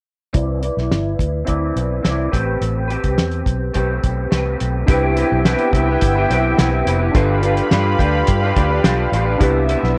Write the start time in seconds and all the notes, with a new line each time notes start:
0.33 C2 C4 E4 B4 D5, kick, closed hi-hat
0.61 E4 B4 D5, closed hi-hat
0.77 B1, snare
0.91 G1, snare, closed hi-hat
1.19 D2, kick, closed hi-hat
1.45 D2 C4 E4 B4 D5, kick, closed hi-hat
1.76 B1, closed hi-hat
2.02 C2 C4 E4 B4 D5, snare, closed hi-hat
2.31 A1 A3 C4 G4 B4, kick, closed hi-hat
2.61 A1, closed hi-hat
2.88 G4 B4, closed hi-hat
2.92 C4
3.04 C2, kick, closed hi-hat
3.18 E2, snare, closed hi-hat
3.31 closed hi-hat
3.46 B1, kick, closed hi-hat
3.74 B1 A3 C4 G4 B4, kick, closed hi-hat
4.03 B1, kick, closed hi-hat
4.31 C2 A3 C4 G4 B4, snare, closed hi-hat
4.60 B1, closed hi-hat
4.86 C2 B3 C4 D4 E4 G4 B4 E5 G5, kick, closed hi-hat
4.91 B4
5.14 C4 E4 G4 B4, closed hi-hat
5.32 B1
5.45 C4 E4 G4 B4, snare, closed hi-hat
5.59 closed hi-hat
5.72 C2 C4 E4 G4, kick, closed hi-hat
5.77 B4
5.88 E4 G4 B4
6.01 G1, kick, closed hi-hat
6.16 G4 B4
6.20 E4
6.30 B1 C4 E4 G4 B4, closed hi-hat
6.57 B1 C4 E4 G4 B4, snare, closed hi-hat
6.85 F1 C4 E4 G4 B4, closed hi-hat
6.99 E4 G4 B4
7.12 G1 G3 D4 F4 G4 A4 F5 B5, kick, closed hi-hat
7.16 F4 B4
7.42 G3 D4 F4 B4, closed hi-hat
7.57 closed hi-hat
7.71 G2 G3 D4 F4 B4, snare, closed hi-hat
7.98 D2 G3 D4 F4 B4, kick, closed hi-hat
8.27 G2, kick, closed hi-hat
8.42 D4 F4 B4
8.56 D2 G3 D4 F4 B4, kick, closed hi-hat
8.69 D4 F4 B4
8.83 B1 G3 D4 F4 B4, snare, closed hi-hat
9.12 A1 G3 D4 F4 B4, closed hi-hat
9.25 F4 B4
9.29 D4
9.38 C2 C3 G3 B3 D4 E4 G4 E5, kick, closed hi-hat
9.43 B4
9.67 C3 G3 B3 E4, closed hi-hat
9.83 B1, snare